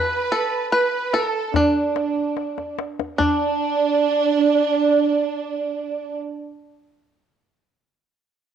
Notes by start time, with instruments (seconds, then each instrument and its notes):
Already playing: five-string banjo B4, violin section B4
0.32 five-string banjo A4, tombak ka
0.71 violin section B4, five-string banjo B4
1.12 violin section A4, five-string banjo A4, tombak tek
1.53 violin section D4, five-string banjo D4, tombak dum
1.96 tombak tek
2.17 tombak ka
2.37 tombak tek
2.58 tombak ka
2.79 tombak tek
2.99 tombak ka
3.18 violin section D4, five-string banjo D4, tombak dum